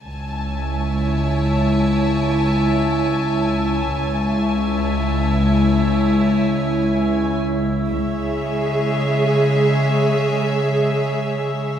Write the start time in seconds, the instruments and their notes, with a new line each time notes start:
0.02 cello section C#2, double bass section C#2, ambient pad E4 C#5 E5, violin section G#5 A5
3.97 double bass section C#2, cello section C#2, ambient pad E4 C#5 E5
7.90 double bass section C#2, cello section C#3, viola section G#3 G#4, ambient pad G#4 C#5 E5, violin section E5